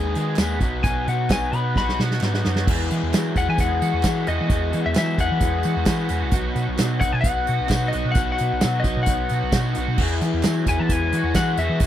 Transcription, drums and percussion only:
0.15 closed hi-hat medium
0.36 snare loud
0.36 clap loud
0.36 closed hi-hat loud
0.36 tambourine loud
0.60 kick medium
0.60 closed hi-hat medium
0.84 kick loud
0.84 closed hi-hat medium
1.08 closed hi-hat medium
1.30 kick medium
1.30 snare loud
1.30 clap loud
1.30 closed hi-hat loud
1.30 tambourine loud
1.53 closed hi-hat medium
1.76 kick medium
1.76 snare medium
1.89 snare medium
2.00 snare medium
2.11 snare medium
2.21 snare medium
2.21 clap loud
2.34 snare medium
2.45 snare loud
2.56 snare medium
2.67 kick loud
2.67 crash loud
2.91 closed hi-hat medium
3.14 snare loud
3.14 clap loud
3.14 closed hi-hat loud
3.14 tambourine loud
3.36 kick medium
3.36 closed hi-hat medium
3.58 kick loud
3.58 closed hi-hat loud
3.82 closed hi-hat medium
4.03 kick medium
4.03 snare loud
4.03 clap loud
4.03 closed hi-hat loud
4.03 tambourine loud
4.27 closed hi-hat medium
4.50 kick loud
4.50 closed hi-hat loud
4.73 closed hi-hat medium
4.95 snare loud
4.95 clap loud
4.95 closed hi-hat loud
4.95 tambourine loud
5.18 kick medium
5.18 closed hi-hat medium
5.41 kick loud
5.41 closed hi-hat loud
5.63 closed hi-hat medium
5.86 kick medium
5.86 snare loud
5.86 clap loud
5.86 closed hi-hat loud
5.86 tambourine loud
6.09 closed hi-hat medium
6.31 kick loud
6.31 closed hi-hat loud
6.56 closed hi-hat medium
6.78 snare loud
6.78 clap medium
6.78 closed hi-hat loud
6.78 tambourine loud
7.01 kick medium
7.01 closed hi-hat medium
7.24 kick loud
7.24 closed hi-hat loud
7.47 closed hi-hat medium
7.69 kick medium
7.69 snare loud
7.69 clap loud
7.69 closed hi-hat loud
7.69 tambourine loud
7.93 closed hi-hat medium
8.15 kick loud
8.15 closed hi-hat loud
8.38 closed hi-hat medium
8.61 snare loud
8.61 clap loud
8.61 closed hi-hat loud
8.61 tambourine loud
8.84 kick medium
8.84 closed hi-hat medium
9.06 kick loud
9.06 closed hi-hat loud
9.29 closed hi-hat medium
9.52 kick medium
9.52 snare loud
9.52 clap loud
9.52 closed hi-hat loud
9.52 tambourine loud
9.75 closed hi-hat medium
9.98 kick loud
9.98 crash loud
10.21 closed hi-hat medium
10.43 snare loud
10.43 clap loud
10.43 closed hi-hat loud
10.43 tambourine loud
10.66 kick medium
10.66 closed hi-hat medium
10.89 kick medium
10.89 closed hi-hat loud
11.13 closed hi-hat medium
11.35 kick medium
11.35 snare loud
11.35 clap loud
11.35 closed hi-hat loud
11.35 tambourine loud
11.57 closed hi-hat medium
11.80 kick loud
11.80 closed hi-hat loud

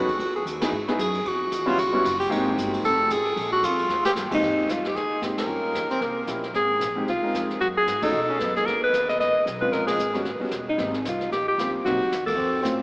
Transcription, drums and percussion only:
0.08 kick medium
0.08 ride medium
0.20 kick soft
0.20 ride medium
0.46 kick soft
0.46 hi-hat pedal medium
0.46 ride medium
0.61 snare medium
0.61 ride medium
0.73 kick soft
0.88 snare soft
0.99 kick soft
0.99 hi-hat pedal soft
0.99 ride medium
1.15 ride medium
1.25 kick soft
1.25 ride medium
1.52 kick soft
1.52 hi-hat pedal medium
1.52 ride medium
1.68 ride soft
1.78 kick soft
1.78 ride medium
2.05 kick soft
2.05 hi-hat pedal medium
2.05 ride medium
2.21 ride medium
2.31 kick soft
2.31 ride medium
2.58 kick soft
2.58 hi-hat pedal medium
2.58 ride medium
2.74 ride medium
2.84 kick soft
2.84 ride medium
3.10 kick soft
3.10 hi-hat pedal medium
3.10 ride medium
3.25 ride medium
3.37 kick soft
3.37 ride medium
3.63 kick soft
3.63 hi-hat pedal medium
3.63 ride medium
3.79 ride medium
3.90 snare medium
4.05 snare medium
4.16 snare medium
4.16 hi-hat pedal medium
4.31 kick medium
4.31 crash medium
4.42 brush sweep soft
4.42 kick soft
4.42 snare soft
4.69 kick soft
4.69 snare medium
4.69 hi-hat pedal medium
4.85 snare soft
4.96 brush sweep soft
4.96 kick soft
4.96 snare soft
5.22 kick soft
5.22 snare medium
5.22 hi-hat pedal soft
5.38 snare medium
5.38 ride medium
5.49 brush sweep soft
5.75 kick soft
5.75 snare medium
5.75 hi-hat pedal soft
5.91 snare soft
6.01 brush sweep soft
6.01 kick soft
6.01 snare soft
6.27 kick soft
6.27 snare medium
6.27 hi-hat pedal soft
6.43 snare soft
6.54 brush sweep soft
6.54 kick soft
6.54 snare soft
6.81 kick soft
6.81 snare medium
6.81 hi-hat pedal medium
7.07 brush sweep soft
7.07 kick soft
7.07 snare soft
7.34 kick soft
7.34 snare medium
7.34 hi-hat pedal medium
7.50 snare soft
7.61 brush sweep soft
7.61 kick soft
7.61 snare soft
7.87 kick soft
7.87 snare medium
7.87 hi-hat pedal medium
8.02 kick medium
8.02 ride medium
8.13 brush sweep soft
8.40 kick soft
8.40 snare medium
8.40 hi-hat pedal soft
8.56 snare soft
8.67 brush sweep soft
8.67 kick soft
8.67 snare soft
8.93 kick soft
8.93 snare medium
8.93 hi-hat pedal medium
9.09 snare soft
9.20 brush sweep soft
9.20 kick soft
9.20 snare soft
9.46 kick soft
9.46 snare soft
9.46 hi-hat pedal soft
9.72 brush sweep soft
9.72 kick soft
9.72 snare soft
9.88 snare medium
9.88 ride medium
9.99 hi-hat pedal medium
10.14 snare soft
10.25 brush sweep soft
10.25 kick soft
10.25 snare soft
10.51 kick soft
10.51 snare medium
10.51 hi-hat pedal medium
10.78 brush sweep soft
10.78 kick soft
10.78 snare soft
10.94 snare medium
11.05 kick soft
11.05 snare medium
11.05 hi-hat pedal medium
11.21 snare soft
11.32 brush sweep soft
11.32 kick soft
11.32 snare soft
11.58 kick soft
11.58 snare medium
11.58 hi-hat pedal soft
11.85 brush sweep soft
11.85 kick soft
11.85 snare soft
12.12 kick soft
12.12 snare medium
12.12 hi-hat pedal medium
12.27 kick medium
12.27 ride medium
12.38 brush sweep soft
12.64 kick soft
12.64 snare medium
12.64 hi-hat pedal medium

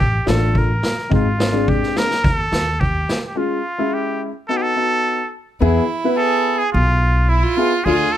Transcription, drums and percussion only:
0.27 snare medium
0.55 kick medium
0.83 snare medium
0.98 snare soft
1.11 kick medium
1.40 snare medium
1.68 kick medium
1.83 snare soft
1.96 snare medium
2.11 snare medium
2.24 kick medium
2.24 snare soft
2.52 snare medium
2.81 kick medium
3.09 snare medium

